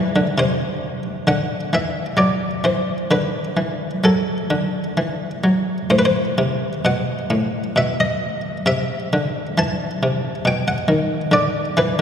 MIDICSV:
0, 0, Header, 1, 2, 480
1, 0, Start_track
1, 0, Tempo, 899550
1, 208, Time_signature, 3, 2, 24, 8
1, 1654, Tempo, 931677
1, 4054, Tempo, 909091
1, 5014, Tempo, 884956
1, 6337, End_track
2, 0, Start_track
2, 0, Title_t, "Harpsichord"
2, 0, Program_c, 0, 6
2, 0, Note_on_c, 0, 52, 61
2, 0, Note_on_c, 0, 71, 81
2, 84, Note_on_c, 0, 50, 62
2, 86, Note_off_c, 0, 52, 0
2, 142, Note_off_c, 0, 71, 0
2, 199, Note_off_c, 0, 50, 0
2, 202, Note_on_c, 0, 48, 53
2, 209, Note_on_c, 0, 72, 90
2, 547, Note_off_c, 0, 48, 0
2, 679, Note_on_c, 0, 50, 63
2, 683, Note_on_c, 0, 78, 105
2, 685, Note_off_c, 0, 72, 0
2, 853, Note_off_c, 0, 50, 0
2, 922, Note_off_c, 0, 78, 0
2, 924, Note_on_c, 0, 52, 55
2, 931, Note_on_c, 0, 76, 73
2, 1097, Note_off_c, 0, 52, 0
2, 1158, Note_on_c, 0, 54, 48
2, 1162, Note_on_c, 0, 74, 66
2, 1167, Note_off_c, 0, 76, 0
2, 1335, Note_off_c, 0, 54, 0
2, 1407, Note_off_c, 0, 74, 0
2, 1410, Note_on_c, 0, 52, 40
2, 1414, Note_on_c, 0, 72, 63
2, 1586, Note_off_c, 0, 52, 0
2, 1657, Note_off_c, 0, 72, 0
2, 1658, Note_on_c, 0, 50, 43
2, 1662, Note_on_c, 0, 71, 74
2, 1829, Note_off_c, 0, 50, 0
2, 1895, Note_on_c, 0, 52, 46
2, 2066, Note_off_c, 0, 71, 0
2, 2068, Note_off_c, 0, 52, 0
2, 2137, Note_on_c, 0, 54, 50
2, 2142, Note_on_c, 0, 69, 52
2, 2310, Note_off_c, 0, 54, 0
2, 2378, Note_on_c, 0, 50, 43
2, 2546, Note_off_c, 0, 69, 0
2, 2549, Note_off_c, 0, 50, 0
2, 2620, Note_on_c, 0, 52, 40
2, 2790, Note_off_c, 0, 52, 0
2, 2858, Note_on_c, 0, 54, 41
2, 3031, Note_off_c, 0, 54, 0
2, 3098, Note_on_c, 0, 45, 55
2, 3099, Note_on_c, 0, 72, 79
2, 3135, Note_off_c, 0, 72, 0
2, 3142, Note_on_c, 0, 71, 70
2, 3175, Note_off_c, 0, 71, 0
2, 3176, Note_on_c, 0, 72, 84
2, 3274, Note_off_c, 0, 45, 0
2, 3345, Note_on_c, 0, 48, 54
2, 3520, Note_off_c, 0, 48, 0
2, 3527, Note_off_c, 0, 72, 0
2, 3585, Note_on_c, 0, 47, 54
2, 3591, Note_on_c, 0, 78, 93
2, 3757, Note_off_c, 0, 47, 0
2, 3820, Note_on_c, 0, 45, 53
2, 3988, Note_off_c, 0, 45, 0
2, 3988, Note_off_c, 0, 78, 0
2, 4056, Note_on_c, 0, 47, 50
2, 4063, Note_on_c, 0, 76, 73
2, 4177, Note_off_c, 0, 76, 0
2, 4183, Note_on_c, 0, 75, 91
2, 4397, Note_off_c, 0, 47, 0
2, 4481, Note_off_c, 0, 75, 0
2, 4531, Note_on_c, 0, 48, 59
2, 4536, Note_on_c, 0, 76, 91
2, 4705, Note_off_c, 0, 48, 0
2, 4779, Note_on_c, 0, 50, 61
2, 4952, Note_off_c, 0, 50, 0
2, 5015, Note_on_c, 0, 52, 59
2, 5020, Note_off_c, 0, 76, 0
2, 5020, Note_on_c, 0, 81, 111
2, 5191, Note_off_c, 0, 52, 0
2, 5259, Note_on_c, 0, 48, 54
2, 5431, Note_off_c, 0, 48, 0
2, 5489, Note_on_c, 0, 47, 51
2, 5501, Note_off_c, 0, 81, 0
2, 5501, Note_on_c, 0, 79, 80
2, 5612, Note_on_c, 0, 78, 97
2, 5618, Note_off_c, 0, 79, 0
2, 5663, Note_off_c, 0, 47, 0
2, 5723, Note_on_c, 0, 51, 56
2, 5899, Note_off_c, 0, 51, 0
2, 5957, Note_on_c, 0, 50, 61
2, 5966, Note_on_c, 0, 74, 88
2, 5971, Note_off_c, 0, 78, 0
2, 6137, Note_off_c, 0, 50, 0
2, 6205, Note_on_c, 0, 52, 69
2, 6209, Note_on_c, 0, 71, 89
2, 6211, Note_off_c, 0, 74, 0
2, 6325, Note_off_c, 0, 52, 0
2, 6337, Note_off_c, 0, 71, 0
2, 6337, End_track
0, 0, End_of_file